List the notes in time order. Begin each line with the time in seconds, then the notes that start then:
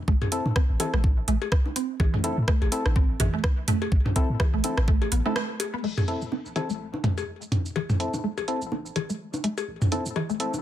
0.08 A1 A3, kick
0.22 mid tom, cowbell
0.32 C4 E4 A4, closed hi-hat
0.46 A2, high conga
0.56 C4, kick, cross-stick
0.70 A1
0.80 E3 C4 E4 A4, closed hi-hat, cowbell
0.94 A1 A3, cross-stick
1.04 kick, high conga
1.28 A1 A3, closed hi-hat
1.42 cowbell
1.52 kick, cross-stick
1.66 high conga
1.76 C4, closed hi-hat
2.00 A1 E3, kick, cowbell
2.14 A3, mid tom
2.24 C4 E4 A4, closed hi-hat, high conga
2.38 A2
2.48 A3, kick, cross-stick
2.62 A1, cowbell
2.72 C4 E4 A4, closed hi-hat
2.86 A1, cross-stick, high conga
2.96 C4, kick
3.20 A1 E3, closed hi-hat, mid tom, cowbell
3.34 A3
3.44 kick, cross-stick, high conga
3.68 A3, closed hi-hat, mid tom
3.82 cowbell
3.92 A1, kick
4.06 mid tom, high conga
4.16 C4 E4 A4, kick, closed hi-hat
4.30 A2
4.40 E3, kick, cross-stick, cowbell
4.54 A1 A3
4.64 C4 E4 A4, closed hi-hat, high conga
4.78 A1, cross-stick
4.88 A3, kick
5.02 cowbell
5.12 A1 B3, closed hi-hat
5.26 A3 C4 E4 A4, high conga
5.36 A3, cross-stick
5.60 closed hi-hat, cowbell
5.74 B3
5.84 A1 A3, crash
5.98 mid tom, cowbell, cabasa
6.08 C4 E4 A4, closed hi-hat
6.22 A2, cabasa
6.32 C4, high conga
6.46 A1, cabasa
6.56 E3 C4 E4 A4, closed hi-hat, cowbell
6.70 A1 A3, cabasa
6.94 high conga
7.04 A1 A3, closed hi-hat, mid tom
7.18 cowbell, cabasa
7.42 cabasa
7.52 C4, closed hi-hat, mid tom, high conga
7.66 cabasa
7.76 A1 E3, cowbell
7.90 A3, mid tom, cabasa
8.00 C4 E4 A4, closed hi-hat
8.14 A2, high conga, cabasa
8.24 A3
8.38 A1, cowbell, cabasa
8.48 C4 E4 A4, closed hi-hat
8.62 A1, cabasa
8.72 C4, high conga
8.86 cabasa
8.96 A1 E3, closed hi-hat, cowbell
9.10 A3, cabasa
9.34 high conga, cabasa
9.44 A3, closed hi-hat
9.58 cowbell, cabasa
9.68 A1
9.82 mid tom, cabasa
9.92 C4 E4 A4, closed hi-hat, high conga
10.06 A2, cabasa
10.16 E3, cowbell
10.30 A1 A3, cabasa
10.40 C4 E4 A4, closed hi-hat
10.54 A1, high conga, cabasa